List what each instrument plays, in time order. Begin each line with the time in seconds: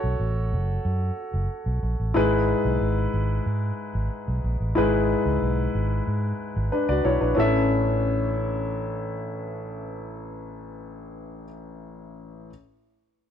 Already playing: grand piano F#4 A4 C#5
0.04 fingered electric bass B1
0.20 fingered electric bass A1
0.53 fingered electric bass F#1
0.85 fingered electric bass F#2
1.34 fingered electric bass F#1
1.66 fingered electric bass B1
1.83 fingered electric bass A#1
2.00 fingered electric bass A1
2.14 fingered electric bass G#1, grand piano G#2 E4 G#4 B4
2.65 fingered electric bass B1
2.81 fingered electric bass G#1
3.14 fingered electric bass G#1
3.46 fingered electric bass G#2
3.95 fingered electric bass G#1
4.28 fingered electric bass B1
4.44 fingered electric bass A#1
4.60 fingered electric bass A1
4.75 fingered electric bass G#1, grand piano G#2 E4 G#4 B4
5.26 fingered electric bass C#2
5.42 fingered electric bass B1
5.75 fingered electric bass G#1
6.07 fingered electric bass G#2
6.56 fingered electric bass G#1
6.72 grand piano D4 B4
6.89 fingered electric bass C#2, grand piano F#4 D5
7.05 fingered electric bass B1, grand piano E4 C#5
7.21 fingered electric bass A#1, grand piano D4 B4
7.35 grand piano A1 C#4 E4 A4, fingered electric bass A1
7.40 grand piano E5